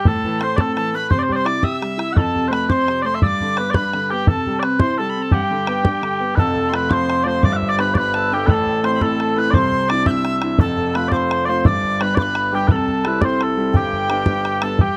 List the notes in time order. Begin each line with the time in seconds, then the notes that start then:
0.05 A2 A4 A5, bodhran
0.24 E3, bodhran
0.40 A3 C5 C6, bodhran
0.56 C4 D5 A5, bodhran
0.60 A4
0.75 E3 A5, bodhran
0.94 A3 B4 B5
1.10 C3 C5 C6, bodhran
1.19 D5
1.23 C5
1.29 G3 D5, bodhran
1.35 C5 C6
1.45 E4 D5 D6, bodhran
1.63 G4 E5 E6, bodhran
1.82 G3, bodhran
1.98 E4, bodhran
2.13 F2 F#5, bodhran
2.17 A4 B5
2.21 A5
2.34 C3, bodhran
2.48 A3 B4 C5 B5
2.53 bodhran
2.68 C4 C5 D6, bodhran
2.72 C6
2.88 C3, bodhran
3.02 A3 C5 D5 C6
3.15 E5
3.22 G2 D5 E6, bodhran
3.27 D6
3.40 D3, bodhran
3.57 B3 B4, bodhran
3.70 D5 B5
3.74 D4 B4, bodhran
3.93 D3, bodhran
4.09 B3 G4 G5
4.27 C3 A4 A5, bodhran
4.47 G3, bodhran
4.59 B4 D5, bodhran
4.64 C4
4.80 E4 C5 C6, bodhran
4.98 G3 A4 A5
5.10 B5
5.16 C4
5.22 A5
5.31 G2 G4 G5, bodhran
5.51 D3
5.67 B3, bodhran
5.83 D4, bodhran
6.02 D3, bodhran
6.20 B3
6.35 F1 F2 A4 B4 A5, bodhran
6.56 bodhran
6.69 F3 A3 C4 C6
6.73 B4 B5, bodhran
6.89 F3 A3 C4 C5 D6, bodhran
6.93 C6
7.10 bodhran
7.23 F3 A3 C4 C5 D5 C6
7.41 G1 G2 D5 D6, bodhran
7.53 E5 F#5
7.62 bodhran
7.67 D5 D6
7.78 G3 B3 D4 B4 B5, bodhran
7.94 G3 B3 D4 B4 D5 B5, bodhran
8.14 A4 A5, bodhran
8.32 G3 B3 D4 G4 G5
8.46 A1 A2 A4 B4 B5, bodhran
8.54 A5
8.67 bodhran
8.84 A3 C4 E4 C5 C6, bodhran
8.94 B5
9.00 A3 C4 E4 A4 B5, bodhran
9.06 A5
9.20 bodhran
9.25 A4
9.36 A3 C4 E4 B4 B5
9.51 C2 C3 C5 D5 D6, bodhran
9.58 C6
9.72 bodhran
9.87 C4 D4 E4 D5 D6, bodhran
10.05 C4 D4 E4 E5 G6, bodhran
10.11 E6
10.25 bodhran
10.42 C4 D4 E4, bodhran
10.59 F1 F2 A4 A5, bodhran
10.77 A4, bodhran
10.93 A3 C4 F4 B4 B5, bodhran
11.08 A3 C4 C5 D5 D6, bodhran
11.12 F4
11.16 C6
11.31 bodhran
11.45 A3 C4 F4 C5 D5 C6
11.64 G1 G2 D5 E6, bodhran
11.68 D6
11.84 bodhran
12.00 G3 B3 D4 B4 B5, bodhran
12.15 G3 B3 B4 D5 D6, bodhran
12.19 D4 B5
12.35 bodhran
12.51 G3 B3 D4 G4 G5
12.68 C2 C3 A4 B4 B5, bodhran
12.76 A5
12.88 A4, bodhran
13.03 G3 C4 E4 B4, bodhran
13.07 B4
13.21 G3 C4 E4 C5 D5 C6, bodhran
13.40 A4, bodhran
13.57 G3 C4 E4
13.73 G1 G2 G4 G5, bodhran
13.93 bodhran
14.09 G3 B3 D4, bodhran
14.26 G3 B3 D4, bodhran
14.45 bodhran
14.62 G3 B3 D4 A4 A5, bodhran
14.79 G2 G4 G5 A5, bodhran